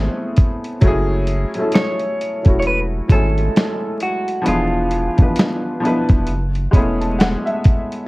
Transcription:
Already playing: felt piano A3 B3 C4 C#4 E4 G#4
0.37 kick, closed hi-hat
0.64 closed hi-hat
0.81 sub bass F#1, felt piano F#3 A3 C#4, kick, closed hi-hat
0.86 felt piano E4 G#4
1.27 closed hi-hat
1.54 felt piano F#3 A3, closed hi-hat
1.58 felt piano C#4 E4 A4
1.72 clean electric guitar C#5, snare, closed hi-hat
1.99 closed hi-hat
2.21 closed hi-hat
2.43 sub bass E1, felt piano F#3 A3 C#4, kick, closed hi-hat
2.47 felt piano E4 F#4
2.60 clean electric guitar C#5, closed hi-hat
2.67 clean electric guitar B4
3.08 sub bass G#1, felt piano F#3 G#3 C#4, clean electric guitar A4, kick, closed hi-hat
3.13 felt piano A3 E4 G#5
3.38 closed hi-hat
3.56 snare, closed hi-hat
4.00 clean electric guitar F#4, closed hi-hat
4.28 closed hi-hat
4.42 felt piano F3 B3 D4
4.46 sub bass E1, felt piano E3 G#4, clean electric guitar F4, closed hi-hat
4.91 closed hi-hat
5.17 felt piano F3 B3 D4, kick, closed hi-hat
5.21 felt piano E3 B4
5.36 snare, closed hi-hat
5.80 felt piano F3 B3 D4
5.85 felt piano E4 B4, closed hi-hat
6.09 sub bass E1, kick, closed hi-hat
6.27 sub bass F#1, closed hi-hat
6.55 closed hi-hat
6.71 sub bass E1, felt piano G#3 B3 C#4 B5, kick, closed hi-hat
6.76 felt piano A3 E4 G#4
7.01 felt piano A5, closed hi-hat
7.19 felt piano F#5, snare, closed hi-hat
7.46 felt piano E5, closed hi-hat
7.64 kick, closed hi-hat
7.92 closed hi-hat

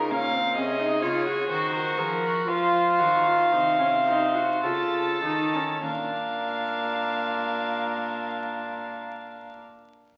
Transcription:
Already playing: cello C#3, viola D#4, violin A#4
0.10 cello A#2, viola C#4, violin F5
0.34 viola C4
0.56 cello C3, viola C#4, violin G#4 D#5
0.79 viola D#4
1.02 cello C#3, viola F4, violin C#5
1.26 viola F#4
1.49 cello D#3, violin F#4 C5
1.74 violin A#4
1.98 cello F3, violin G#4 A#4
2.23 violin F#4
2.48 cello F3, viola F4, violin C5 F5
2.99 cello D#3, viola F#4
3.26 viola F4
3.52 cello C3, viola D#4, violin C5
3.79 viola C#4
4.07 viola D#4
4.35 viola F#4
4.63 cello C#3, viola F4, violin A4 A5
5.23 cello D#3, viola D#4
5.55 viola C#4
5.85 cello A#2, viola D4, violin A#4 F5

